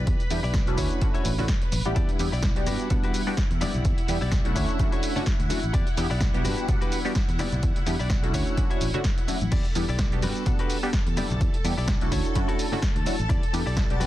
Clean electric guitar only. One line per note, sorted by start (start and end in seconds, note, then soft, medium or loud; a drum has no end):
0.00 0.22 E4 medium
0.00 0.22 G4 medium
0.00 0.22 D5 loud
0.30 muted clean electric guitar stroke soft
0.43 0.67 E4 medium
0.43 0.67 G4 medium
0.43 0.68 D5 medium
0.77 1.06 E4 medium
0.77 1.07 F#4 medium
0.77 1.07 C#5 loud
1.14 1.31 E4 loud
1.14 1.32 F#4 loud
1.14 1.32 C#5 loud
1.48 muted clean electric guitar stroke medium
1.62 muted clean electric guitar stroke soft
1.72 muted clean electric guitar stroke soft
1.96 2.09 E4 loud
1.96 2.09 G4 loud
1.96 2.09 D5 loud
2.20 muted clean electric guitar stroke soft
2.32 2.56 E4 medium
2.32 2.56 G4 medium
2.32 2.57 D5 medium
2.67 2.96 F#4 medium
2.67 2.96 G4 medium
2.67 2.96 B4 loud
3.03 3.21 F#4 loud
3.03 3.21 G4 loud
3.03 3.21 B4 loud
3.37 muted clean electric guitar stroke medium
3.50 muted clean electric guitar stroke soft
3.61 4.00 E4 medium
3.61 4.00 G4 medium
3.61 4.00 D5 loud
4.08 muted clean electric guitar stroke soft
4.21 4.45 E4 medium
4.21 4.45 G4 medium
4.21 4.46 D5 loud
4.55 4.84 E4 medium
4.55 4.85 F#4 medium
4.55 4.85 C#5 loud
4.92 5.09 E4 loud
4.92 5.10 F#4 loud
4.92 5.10 C#5 loud
5.26 muted clean electric guitar stroke medium
5.39 muted clean electric guitar stroke soft
5.50 muted clean electric guitar stroke soft
5.73 5.87 E4 loud
5.73 5.87 G4 loud
5.73 5.87 D5 loud
5.97 muted clean electric guitar stroke soft
6.10 6.34 E4 medium
6.10 6.34 G4 medium
6.10 6.34 D5 medium
6.45 6.74 F#4 medium
6.45 6.74 G4 medium
6.45 6.74 B4 loud
6.81 6.98 F#4 loud
6.81 6.99 G4 loud
6.81 6.99 B4 loud
7.15 muted clean electric guitar stroke medium
7.29 muted clean electric guitar stroke soft
7.39 7.78 E4 medium
7.39 7.78 G4 medium
7.39 7.79 D5 loud
7.87 muted clean electric guitar stroke soft
7.99 8.23 E4 medium
7.99 8.23 G4 medium
7.99 8.24 D5 medium
8.34 8.63 E4 medium
8.34 8.63 F#4 medium
8.34 8.63 C#5 loud
8.70 8.87 E4 loud
8.70 8.88 F#4 loud
8.70 8.88 C#5 loud
9.04 muted clean electric guitar stroke medium
9.18 muted clean electric guitar stroke soft
9.28 muted clean electric guitar stroke soft
9.52 9.65 E4 loud
9.52 9.65 G4 loud
9.52 9.65 D5 loud
9.76 muted clean electric guitar stroke soft
9.89 10.12 E4 medium
9.89 10.13 G4 medium
9.89 10.13 D5 medium
10.23 10.52 F#4 medium
10.23 10.52 G4 medium
10.23 10.52 B4 loud
10.59 10.76 F#4 loud
10.59 10.77 G4 loud
10.59 10.77 B4 loud
10.93 muted clean electric guitar stroke medium
11.07 muted clean electric guitar stroke soft
11.17 11.56 E4 medium
11.17 11.56 G4 medium
11.17 11.57 D5 loud
11.64 muted clean electric guitar stroke soft
11.77 12.01 E4 medium
11.77 12.01 G4 medium
11.77 12.02 D5 medium
12.12 12.41 E4 medium
12.12 12.41 F#4 medium
12.12 12.41 C#5 loud
12.48 12.65 E4 loud
12.48 12.66 F#4 loud
12.48 12.66 A4 loud
12.82 muted clean electric guitar stroke medium
12.95 muted clean electric guitar stroke soft
13.06 muted clean electric guitar stroke soft
13.29 13.43 E4 loud
13.29 13.43 G4 loud
13.29 13.43 D5 loud
13.53 muted clean electric guitar stroke soft
13.66 13.90 E4 medium
13.66 13.90 G4 medium
13.66 13.90 D5 medium
14.00 14.07 F#4 medium
14.00 14.07 G4 medium
14.00 14.07 B4 loud